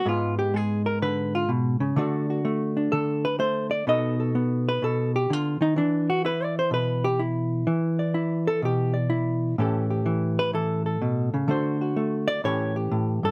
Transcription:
0.06 G#2 G#3 B3 F4
0.39 G4
0.54 G#3 G#4
0.86 A#4
1.02 D3 B4
1.35 F4
1.49 B2
1.80 C#3
1.96 D3 A3 D4 F#4 D5
2.30 F#4
2.45 A3
2.77 D4
2.92 D3 A4
3.25 B4
3.39 A3 C5
3.71 D5
3.87 B2 B3 D#4 A4 D#5
4.20 A4
4.35 B3
4.69 B4
4.82 B2 A4
5.16 G4
5.30 D3 F4
5.61 D#3 D#4
5.76 E3 D4
6.10 F#4
6.25 E4 B4
6.44 D5
6.59 C5
6.71 B2 B4
7.04 G4
7.19 E4
7.67 E3
7.99 D5
8.14 E4
8.47 A4
8.62 B2 G4
8.94 D5
9.10 E4
9.58 A2 E3 C#4 G4 A4
9.90 G4
10.06 E3
10.39 B4
10.53 E3 A4
10.86 A4
11.02 B2
11.34 C#3
11.48 D3 A3 D4 F#4 C5
11.81 F#4
11.96 A3
12.28 D5
12.44 A2 E3 C#4 G4 C#5
12.76 G4
12.91 A2
13.23 G2 A4

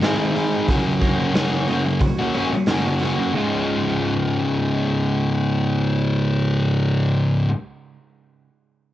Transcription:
Already playing: D#4 G#4
0.00 G#2 D#3 G#3 C4 D#4 G#4, snare, open hi-hat
0.17 G#3 C4 D#4 G#4
0.33 G#3 C4 D#4 G#4, open hi-hat
0.67 F#2 C#3 F#3 A#3 C#4 F#4, kick, open hi-hat
1.01 A#3, kick, open hi-hat
1.17 F#3 A#3 C#4 F#4
1.33 F#2 C#3 F#3 A#3 C#4 F#4, snare, open hi-hat
1.68 F#3 A#3 C#4 F#4, open hi-hat
1.85 muted distorted electric guitar stroke
2.00 F#4, kick, open hi-hat
2.19 F#3 A#3 C#4 F#4
2.33 F#3 A#3 C#4 F#4, open hi-hat
2.52 muted distorted electric guitar stroke
2.66 F#2 C#3 F#3 A#3, snare, open hi-hat
2.70 C#4 F#4
2.84 F#3 A#3 C#4 F#4
2.99 F#3 A#3 C#4, open hi-hat
3.04 F#4
3.34 C#2 G#2 C#3 G#3
3.38 F4

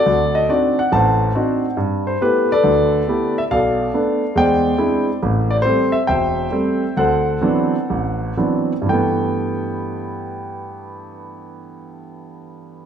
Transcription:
Already playing: F#4 A4 D5
0.06 D2
0.35 D#5
0.49 C4 D4 D#4 F#4 D5
0.79 F#5
0.92 A1 A2 C5 F#5 A5
1.35 C4 D4 D#4 F#4
1.77 G2
2.07 C5
2.21 A3 B3 E4 G4 B4
2.52 A4 B4 D5
2.64 D2 D3
3.07 A3 B3 E4 G4
3.38 E5
3.51 B1 A4 D5 F5
3.93 A3 B3 D4
4.36 E2 G#3 C5 D5 G5
4.78 G#3 C4 D4 E4
5.23 A1 A2
5.51 D5
5.62 G3 A3 C4 C5
5.92 E5
6.07 E1 C5 E5 G5
6.51 G3 A3 C4
6.97 D2 A4 C5 F#5
7.41 E3 F#3 B3 C4 D4
7.90 A1
8.37 E3 F#3 B3 C4 D4
8.82 G2
8.86 E3 A3 G5
8.93 B3

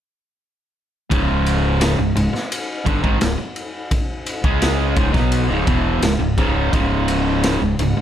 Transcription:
1.10 C#1 C#2 G#2 C#3, kick, ride
1.46 ride
1.81 snare, ride
1.99 C#1 C#2 G#2
2.16 C#1 C#2 G#2, ride
2.33 muted fingered electric bass stroke, muted distorted electric guitar stroke, snare
2.52 ride
2.86 G1 G2 D3, kick, ride
3.03 G#1 G#2 D#3, kick
3.20 C#1 C#2 G#2, snare, ride
3.38 muted distorted electric guitar stroke, muted fingered electric bass stroke
3.56 ride
3.91 kick, ride
4.26 ride
4.44 C#2 C#3 G#3 C#4, kick
4.62 snare, ride
4.96 C#1 C#2 G#2, kick, ride
5.13 B1 B2 F#3 B3, kick, snare
5.32 ride
5.49 C#1 C#2 G#2
5.66 E1 E2 B2 E3, kick, ride
6.02 C#1 C#2 G#2, snare, ride
6.19 C#1 C#2 G#2
6.37 C#1 C#2 G#2 C#3, kick, ride
6.72 C#1 C#2 G#2 C#3, kick, ride
7.08 ride
7.43 snare, ride
7.61 C#1 C#2 G#2
7.79 C#1 C#2 G#2, ride
7.97 muted fingered electric bass stroke, muted distorted electric guitar stroke

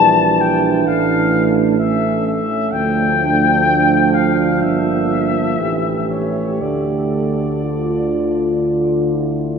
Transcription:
Already playing: A#1 E3 G3 D4 A5
0.41 G5
0.86 A1 A3 F5
1.79 C#4 E5
2.27 E5
2.73 D2 F3 D4 G5
4.14 F5
4.62 G1 A#3 E5
5.59 A1 E3 A3 G4
6.09 C#5
6.61 D2 D3 D5
7.63 F4
9.15 E4

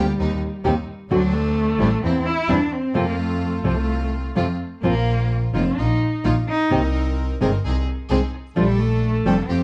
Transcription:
Already playing: D2 G3 A#3 F4 G4
0.18 D#2 A#3 C4 D#4
0.64 D#2 D#3 A#3 C4 D#4 G4
1.10 D2 D3 F#3 A3 C4 D4 F#4
1.33 A3
1.78 A1 E3 F#3 G3 C4 D4 E4
2.02 E2 A#3 C4 E4
2.26 E4
2.48 E2 E3 G3 A#3 C4 D4 E4
2.72 C4
2.94 F2 C3 F3 A3 A#3 C4 F4
3.19 A3
3.64 C2 C3 F3 A3 C4 F4
4.35 F2 C3 F3 A3 C4 F4
4.83 A#1 F3 A#3 C4 F4
5.53 F1 D#3 A#3 C4 D#4 F4
5.77 A#1 A#3 D#4 F4
6.24 A#1 D#3 A#3 D#4 F4
6.49 D#4
6.70 C2 C3 D#3 A#3 C4 D#4 G4 A#4
7.40 G1 C3 D#3 G#3 C4 D#4 G#4 A#4
7.64 C2 C4 D#4 G#4
8.10 C2 C3 D#3 G#3 C4 D#4 G#4
8.56 A#1 F3 G3 A3 D4 F4 A4
8.80 A3
9.25 F1 F3 G3 A#3 C4 D4 G4 A4
9.46 F2 A3 C4 F4 G4

